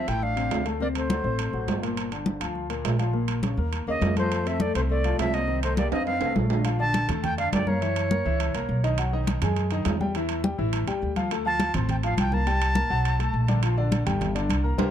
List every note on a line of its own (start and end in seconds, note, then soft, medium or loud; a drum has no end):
0.00 0.10 E5 medium
0.08 0.48 A1 medium
0.08 0.32 A3 medium
0.08 0.25 E4 medium
0.08 0.32 A4 medium
0.08 0.24 G5 medium
0.08 high conga soft
0.08 high timbale medium
0.22 0.67 D4 medium
0.22 0.66 F5 medium
0.22 high conga soft
0.36 0.60 C3 medium
0.36 0.61 C4 medium
0.36 high conga soft
0.36 high timbale medium
0.51 1.19 D2 medium
0.51 high conga soft
0.51 high timbale medium
0.51 low timbale medium
0.65 0.77 A3 medium
0.65 0.78 A4 medium
0.65 high conga soft
0.65 high timbale medium
0.80 1.04 C3 medium
0.80 0.88 A#3 medium
0.80 1.04 C4 medium
0.80 0.88 D5 medium
0.80 high conga soft
0.95 1.80 A3 medium
0.95 1.80 C5 medium
0.95 high conga soft
0.95 high timbale medium
1.09 1.21 F#3 medium
1.09 1.22 F#4 medium
1.09 high conga medium
1.09 high timbale medium
1.09 low timbale medium
1.24 1.51 A1 medium
1.24 1.48 C4 medium
1.24 1.49 C5 medium
1.24 high conga soft
1.39 high conga soft
1.39 high timbale medium
1.53 1.67 A1 medium
1.53 1.77 F#3 medium
1.53 1.78 F#4 medium
1.53 high conga soft
1.68 2.35 G1 medium
1.68 high conga medium
1.68 high timbale medium
1.68 low timbale medium
1.83 2.07 A#2 medium
1.83 2.07 A#3 medium
1.83 high timbale medium
1.97 high conga soft
1.97 high timbale medium
2.12 2.36 D3 medium
2.12 2.36 D4 medium
2.12 high conga soft
2.12 high timbale medium
2.26 high conga medium
2.26 low timbale medium
2.40 2.82 D2 medium
2.40 2.65 F3 medium
2.40 2.65 F4 medium
2.40 high conga soft
2.40 high timbale medium
2.55 high conga soft
2.70 2.94 A#2 medium
2.70 2.94 A#3 medium
2.70 high conga soft
2.70 high timbale medium
2.84 3.52 A#1 medium
2.84 high conga soft
2.84 high timbale medium
2.84 low timbale medium
2.99 3.11 F3 medium
2.99 3.11 F4 medium
2.99 high conga soft
2.99 high timbale medium
3.13 3.38 A#2 medium
3.13 3.38 A#3 medium
3.13 high conga soft
3.28 high conga soft
3.28 high timbale medium
3.43 3.55 C#3 medium
3.43 3.55 C#4 medium
3.43 high conga medium
3.43 high timbale medium
3.43 low timbale medium
3.57 3.85 D#2 medium
3.57 3.82 A#3 medium
3.57 3.82 A#4 medium
3.57 high conga soft
3.73 high conga soft
3.73 high timbale medium
3.86 4.00 D#2 medium
3.86 4.11 C#3 medium
3.86 4.15 A#3 medium
3.86 4.11 C#4 medium
3.86 4.16 D#5 medium
3.86 high conga soft
4.02 4.69 F2 medium
4.02 high conga medium
4.02 high timbale medium
4.02 low timbale medium
4.16 4.41 F3 medium
4.16 4.48 A3 medium
4.16 4.41 F4 medium
4.16 4.49 C5 medium
4.16 high conga medium
4.16 high timbale medium
4.31 high conga soft
4.31 high timbale medium
4.46 4.70 A3 medium
4.46 4.62 C4 medium
4.46 4.70 A4 medium
4.46 4.63 E5 medium
4.46 high conga soft
4.46 high timbale medium
4.60 4.75 A3 medium
4.60 4.75 D5 medium
4.60 high conga medium
4.60 low timbale medium
4.75 5.16 C2 medium
4.75 4.83 A3 medium
4.75 4.99 C4 medium
4.75 4.81 C5 medium
4.75 5.00 C5 medium
4.75 high conga soft
4.75 high timbale medium
4.89 5.17 A3 medium
4.89 5.17 D5 medium
4.89 high conga soft
5.04 5.29 F3 medium
5.04 5.29 F4 medium
5.04 high conga soft
5.04 high timbale medium
5.19 5.86 C2 medium
5.19 5.33 C4 medium
5.19 5.36 E5 medium
5.19 high conga soft
5.19 high timbale medium
5.19 low timbale medium
5.33 5.46 A#3 medium
5.33 5.63 C4 medium
5.33 5.46 A#4 medium
5.33 5.62 D#5 medium
5.33 high conga soft
5.33 high timbale medium
5.48 5.72 D#3 medium
5.48 5.72 D#4 medium
5.48 high conga soft
5.63 5.77 A3 medium
5.63 5.76 C5 medium
5.63 high conga soft
5.63 high timbale medium
5.77 5.89 G3 medium
5.77 5.91 A#3 medium
5.77 5.89 G4 medium
5.77 5.91 D5 medium
5.77 high conga medium
5.77 high timbale medium
5.77 low timbale medium
5.92 6.19 F2 medium
5.92 6.06 C4 medium
5.92 6.16 D#4 medium
5.92 6.05 D#5 medium
5.92 6.16 D#5 medium
5.92 high conga soft
5.92 high timbale loud
6.06 6.34 C4 medium
6.06 6.34 F5 medium
6.06 high conga soft
6.06 high timbale medium
6.21 6.34 C2 medium
6.21 6.45 A3 medium
6.21 6.45 A4 medium
6.21 high conga soft
6.21 high timbale medium
6.36 7.03 A#1 medium
6.36 high conga medium
6.36 low timbale medium
6.50 6.62 D3 medium
6.50 6.62 D4 medium
6.50 low timbale medium
6.65 6.77 F3 medium
6.65 6.77 F4 medium
6.65 6.77 F5 medium
6.65 high conga soft
6.65 high timbale loud
6.79 7.03 D3 medium
6.79 7.04 D4 medium
6.79 7.04 D5 medium
6.79 7.07 A5 loud
6.79 high conga soft
6.94 high conga medium
6.94 high timbale medium
7.08 7.49 F2 medium
7.08 7.32 A3 medium
7.08 7.33 A4 medium
7.08 7.33 A5 medium
7.08 high conga soft
7.08 low conga medium
7.08 high timbale medium
7.23 7.37 G5 loud
7.23 high conga soft
7.23 low conga medium
7.23 high timbale medium
7.38 7.62 D3 medium
7.38 7.62 D4 medium
7.38 7.62 D5 medium
7.38 7.52 F5 loud
7.38 high conga soft
7.38 high timbale medium
7.53 8.20 F#2 loud
7.53 7.69 D5 medium
7.53 high conga medium
7.53 high timbale medium
7.53 low timbale medium
7.67 7.79 A#3 medium
7.67 7.79 A#4 medium
7.67 8.84 C#5 medium
7.67 7.79 A#5 medium
7.67 high conga medium
7.81 8.05 E3 medium
7.81 8.05 E4 medium
7.81 8.06 E5 medium
7.81 high conga soft
7.81 high timbale medium
7.96 high conga soft
7.96 high timbale medium
8.11 8.23 A#3 medium
8.11 8.23 A#4 medium
8.11 8.23 A#5 medium
8.11 high conga medium
8.25 8.52 C#2 medium
8.25 8.49 E3 medium
8.25 8.50 E4 medium
8.25 8.50 E5 medium
8.25 high conga soft
8.40 high conga soft
8.40 high timbale loud
8.54 8.68 C2 medium
8.54 8.78 A#3 medium
8.54 8.79 A#4 medium
8.54 8.79 A#5 medium
8.54 high conga soft
8.54 high timbale medium
8.69 9.36 B1 loud
8.69 high conga soft
8.84 8.95 D#3 medium
8.84 8.96 D#4 medium
8.84 8.96 D#5 medium
8.84 high timbale medium
8.98 9.10 F#3 medium
8.98 9.10 F#4 medium
8.98 9.11 F#5 medium
8.98 high conga soft
8.98 high timbale loud
9.13 9.37 D#3 medium
9.13 9.37 D#4 medium
9.13 9.37 D#5 medium
9.13 high conga soft
9.27 high conga loud
9.27 high timbale medium
9.42 9.82 F#2 loud
9.42 9.66 G#3 medium
9.42 9.66 G#4 medium
9.42 9.66 G#5 medium
9.42 high conga soft
9.42 low conga medium
9.42 high timbale medium
9.56 high conga soft
9.56 high timbale medium
9.71 9.95 D#3 medium
9.71 9.95 D#4 medium
9.71 9.95 D#5 medium
9.71 high conga soft
9.71 high timbale medium
9.85 10.53 E2 loud
9.85 high conga medium
9.85 high timbale medium
9.85 low timbale medium
10.01 10.12 G3 medium
10.01 10.12 G4 medium
10.01 10.12 G5 medium
10.01 high conga medium
10.15 10.39 E3 medium
10.15 10.39 E4 medium
10.15 10.40 E5 medium
10.15 high conga soft
10.15 high timbale medium
10.29 high conga soft
10.29 high timbale medium
10.44 10.56 G3 medium
10.44 10.56 G4 medium
10.44 10.56 G5 medium
10.44 high conga medium
10.58 10.85 A1 medium
10.58 10.82 E3 medium
10.58 10.82 E4 medium
10.58 10.82 E5 medium
10.58 high conga soft
10.73 high conga soft
10.73 high timbale medium
10.87 11.01 C#2 medium
10.87 11.11 G3 medium
10.87 11.11 G4 medium
10.87 11.11 G5 medium
10.87 high conga soft
10.87 high timbale medium
11.02 11.69 D2 medium
11.02 high conga soft
11.16 11.28 F3 medium
11.16 11.28 F4 medium
11.16 11.28 F5 medium
11.16 high conga medium
11.16 high timbale medium
11.31 11.43 A3 medium
11.31 11.43 A4 medium
11.31 11.44 A5 medium
11.31 high conga soft
11.31 high timbale medium
11.45 11.69 F3 medium
11.45 11.69 F4 medium
11.45 11.69 F5 medium
11.45 11.73 A5 loud
11.45 high conga soft
11.60 high conga medium
11.60 high timbale medium
11.74 12.15 A1 medium
11.74 11.98 C4 medium
11.74 11.99 C5 medium
11.74 11.99 C6 medium
11.74 high conga soft
11.74 low conga medium
11.74 high timbale medium
11.89 11.96 G5 medium
11.89 high conga soft
11.89 low conga medium
11.89 high timbale medium
12.03 12.27 F3 medium
12.03 12.27 F4 medium
12.03 12.28 F5 medium
12.03 12.18 F5 medium
12.03 high conga soft
12.03 high timbale medium
12.18 12.85 C2 loud
12.18 12.35 G5 medium
12.18 high conga medium
12.18 high timbale loud
12.32 12.44 A#3 medium
12.32 12.44 A#4 medium
12.32 13.49 A5 loud
12.32 12.45 A#5 medium
12.32 high conga medium
12.46 12.70 G3 medium
12.46 12.71 G4 medium
12.46 12.71 G5 medium
12.46 high conga soft
12.46 high timbale medium
12.61 high conga soft
12.61 high timbale medium
12.75 12.87 A#3 medium
12.75 12.87 A#4 medium
12.75 12.88 A#5 medium
12.75 high conga medium
12.90 13.31 B1 medium
12.90 13.14 F#3 medium
12.90 13.14 F#4 medium
12.90 13.14 F#5 medium
12.90 high conga soft
13.04 high conga soft
13.04 high timbale medium
13.19 13.43 A3 medium
13.19 13.43 A4 medium
13.19 13.43 A5 medium
13.19 high conga soft
13.19 high timbale medium
13.33 14.00 A#1 loud
13.33 high conga soft
13.48 13.60 D3 medium
13.48 13.60 D4 medium
13.48 13.61 D5 medium
13.48 high conga medium
13.48 high timbale medium
13.63 13.75 F3 medium
13.63 13.75 F4 medium
13.63 13.75 F5 medium
13.63 high conga soft
13.63 high timbale medium
13.77 14.01 D3 loud
13.77 14.01 D4 medium
13.77 14.01 D5 medium
13.77 high conga soft
13.92 high conga medium
13.92 high timbale medium
14.06 14.46 G1 loud
14.06 14.30 G3 medium
14.06 14.30 G4 medium
14.06 14.30 G5 medium
14.06 high conga soft
14.06 low conga medium
14.06 high timbale medium
14.21 high conga soft
14.21 low conga medium
14.21 high timbale medium
14.35 14.59 D3 medium
14.35 14.59 D4 medium
14.35 14.59 D5 medium
14.35 high conga soft
14.35 high timbale medium
14.49 14.76 C2 loud
14.49 high conga medium
14.49 high timbale loud
14.64 14.76 A#3 medium
14.64 14.76 A#4 medium
14.64 14.76 A#5 medium
14.78 14.89 C2 loud
14.78 14.87 G4 loud
14.78 14.88 A#4 loud
14.78 14.88 C5 loud
14.78 high conga loud
14.78 high timbale loud